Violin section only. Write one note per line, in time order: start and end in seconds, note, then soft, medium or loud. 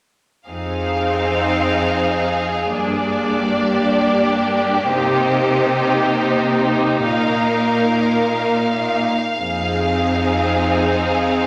0.49 3.42 G#4 soft
0.49 2.68 F5 soft
2.73 4.89 D5 soft
3.47 7.06 G4 soft
4.90 7.02 C5 soft
7.06 9.16 A#4 soft
7.06 11.47 F5 soft
9.36 11.47 G#4 soft